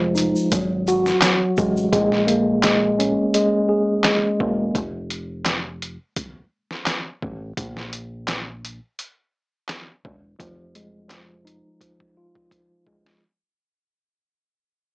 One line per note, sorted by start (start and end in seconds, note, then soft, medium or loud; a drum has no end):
0.00 0.32 F1 loud
0.00 0.53 F3 medium
0.00 0.52 G#3 medium
0.15 0.51 D#4 medium
0.15 closed hi-hat medium
0.15 shaker soft
0.18 shaker medium
0.36 shaker medium
0.52 1.11 G#1 loud
0.52 1.21 F#3 medium
0.52 kick loud
0.52 closed hi-hat loud
0.52 shaker medium
0.87 1.93 F#4 medium
0.87 shaker medium
1.06 snare soft
1.06 shaker medium
1.21 1.93 F#3 medium
1.21 snare loud
1.21 clap medium
1.21 closed hi-hat medium
1.21 shaker medium
1.57 1.87 A1 medium
1.57 1.91 G#3 medium
1.57 kick medium
1.57 shaker soft
1.57 shaker medium
1.77 shaker soft
1.92 3.14 A#1 loud
1.92 2.62 G#3 medium
1.92 kick loud
1.92 closed hi-hat medium
2.12 snare soft
2.27 3.69 A#3 medium
2.27 closed hi-hat medium
2.63 3.33 G#3 medium
2.63 snare loud
2.63 clap medium
2.63 closed hi-hat medium
2.99 4.40 C#4 medium
2.99 closed hi-hat medium
3.34 4.03 G#3 medium
3.34 closed hi-hat loud
3.69 4.75 G#4 medium
4.04 4.75 G#3 medium
4.04 snare loud
4.04 clap medium
4.04 closed hi-hat medium
4.40 4.69 E1 medium
4.40 4.75 A#3 medium
4.40 kick medium
4.75 5.96 F1 loud
4.75 kick loud
4.75 closed hi-hat medium
5.10 closed hi-hat medium
5.45 snare loud
5.45 clap medium
5.45 closed hi-hat medium
5.82 closed hi-hat medium
6.16 kick loud
6.16 closed hi-hat loud
6.71 snare soft
6.86 snare loud
6.86 clap medium
6.86 closed hi-hat medium
7.22 7.52 A1 medium
7.22 kick medium
7.57 8.79 A#1 loud
7.57 kick loud
7.57 closed hi-hat medium
7.77 snare soft
7.93 closed hi-hat medium
8.28 snare loud
8.28 clap medium
8.28 closed hi-hat medium
8.65 closed hi-hat medium
8.99 closed hi-hat medium
9.69 snare loud
9.69 clap medium
9.69 closed hi-hat medium
10.05 10.34 E1 medium
10.05 kick medium
10.39 11.61 F1 loud
10.39 11.08 F3 medium
10.39 kick loud
10.39 closed hi-hat medium
10.75 12.16 G#3 medium
10.75 closed hi-hat medium
11.09 11.80 F3 medium
11.09 snare loud
11.09 clap medium
11.09 closed hi-hat medium
11.45 12.86 D#4 medium
11.45 closed hi-hat medium
11.81 12.51 F3 medium
11.81 kick medium
11.81 closed hi-hat medium
12.00 kick soft
12.17 13.22 F4 medium
12.35 kick medium
12.51 13.22 F3 medium
12.51 kick medium
12.51 closed hi-hat medium
12.87 13.16 E1 medium
12.87 13.22 G#3 medium
12.87 kick medium
13.06 snare medium